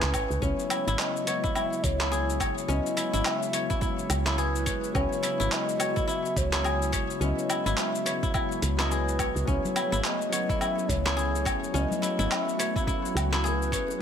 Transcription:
Already playing: A3 C#4 E4 G#4 B4 C#5
0.02 C#2, clap, shaker
0.14 G#1 C#5, kick, closed hi-hat, low woodblock, shaker
0.30 C#2, high bongo, shaker
0.40 C#2 C#3 F#3 G#3 B3 C#4 E4 C#5, kick, shaker
0.59 shaker
0.70 E4, closed hi-hat, low woodblock, shaker
0.87 G#1 E4, shaker
0.99 D#5, clap, shaker
1.16 shaker
1.25 F#3 B3 C#5, closed hi-hat, shaker
1.29 F#4
1.44 E4, kick, shaker
1.55 E4 E5, low woodblock, shaker
1.73 shaker
1.84 C#2 C#5, kick, closed hi-hat, shaker
2.00 E4, clap, shaker
2.12 G#4, shaker
2.30 shaker
2.40 G#1 C#5, kick, closed hi-hat, low woodblock, shaker
2.58 shaker
2.66 C#2 F#3 B3 C#4 E4 D#5, shaker
2.86 shaker
2.97 E4, closed hi-hat, shaker
3.13 G#1 E4, shaker
3.25 E5, clap, low woodblock, shaker
3.42 shaker
3.51 F#3 B3 C#5, closed hi-hat, shaker
3.55 E4
3.70 E4, kick, shaker
3.81 E4, kick, shaker
3.99 shaker
4.10 C#2, closed hi-hat, low woodblock, shaker
4.26 E4, clap, shaker
4.32 C#5
4.38 G#4 B4, shaker
4.55 shaker
4.66 G#1 C#5, kick, closed hi-hat, shaker
4.84 shaker
4.93 C#2 F#3 B3 C#4 C#5, kick, low woodblock, shaker
4.97 E4
5.12 shaker
5.23 E4, closed hi-hat, shaker
5.40 G#1 E4, shaker
5.52 E5, clap, shaker
5.57 D#5
5.69 shaker
5.78 F#3 B3 C#5, closed hi-hat, low woodblock, shaker
5.82 F#4
5.96 E4, kick, shaker
6.07 E4 E5, shaker
6.25 shaker
6.36 C#2 C#5, kick, closed hi-hat, shaker
6.53 E4, clap, shaker
6.64 G#4, low woodblock, shaker
6.82 shaker
6.92 G#1 C#5, kick, closed hi-hat, shaker
7.10 shaker
7.20 C#2 F#3 B3 C#4 D#5, shaker
7.24 E4
7.39 shaker
7.49 E4, closed hi-hat, low woodblock, shaker
7.66 G#1 E4, shaker
7.77 E5, clap, shaker
7.95 shaker
8.03 F#3 B3 E4 C#5, closed hi-hat, shaker
8.23 E4, kick, shaker
8.34 E4, kick, low woodblock, shaker
8.52 shaker
8.62 C#2, closed hi-hat, shaker
8.77 F#3 B3 E4, clap, shaker
8.81 D#5
8.91 G#4 B4, shaker
9.08 shaker
9.19 B1 C#5, kick, closed hi-hat, low woodblock, shaker
9.36 C#2, shaker
9.45 C#2 F#3 A3 B3 C#4 E4 G#4 C#5, kick, shaker
9.65 low conga, shaker
9.76 E4, closed hi-hat, low woodblock, shaker
9.92 G#1 E4, high bongo, high conga, shaker
10.04 D#5, clap, shaker
10.21 shaker
10.29 F#3 B3 C#5, closed hi-hat, shaker
10.33 F#4
10.49 E4, kick, shaker
10.60 E4 E5, low woodblock, shaker
10.78 high bongo, shaker
10.89 C#2 C#5, kick, closed hi-hat, shaker
11.05 E4, clap, shaker
11.17 G#4, high bongo, shaker
11.35 shaker
11.45 G#1 C#5, kick, closed hi-hat, low woodblock, shaker
11.62 high conga, shaker
11.72 C#2 F#3 B3 C#4 E4 F#4 D#5, shaker
11.91 low conga, shaker
12.02 E4, closed hi-hat, shaker
12.19 G#1 E4, high bongo, high conga, shaker
12.30 E5, clap, low woodblock, shaker
12.49 shaker
12.57 F#3 B3 E4 C#5, closed hi-hat, high bongo, shaker
12.76 E4, kick, shaker
12.87 E4, kick, shaker
13.05 shaker
13.15 C#2, closed hi-hat, low woodblock, shaker
13.32 E4, clap, shaker
13.44 G#4 B4, shaker
13.62 shaker
13.72 G#1 C#5, kick, closed hi-hat, shaker
13.88 high bongo, shaker
13.98 F#3

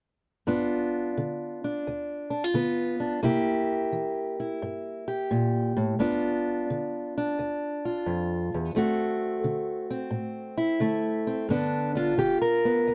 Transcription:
0.47 G2 B3 D4 F4
1.18 D3
1.64 D4
1.87 D2
2.30 D4
2.44 F4
2.54 D3 B3
3.00 D4
3.23 C3 A#3 E4 G4
3.92 E3
4.40 E4
4.62 G2
5.08 G4
5.31 A#2
5.77 A2
5.99 G2 B3 D4 F4
6.70 D3
7.18 D4
7.39 D2
7.85 F4
8.06 F2
8.54 E2
8.75 D2 A3 C4 F#4
9.44 D3
9.90 C4
10.11 A2
10.58 E4
10.80 D3 A3
11.27 C4
11.49 G2 D3 B3 D4
11.95 D4 F4
12.18 D3 G4
12.42 A#4
12.65 B3
12.87 D2

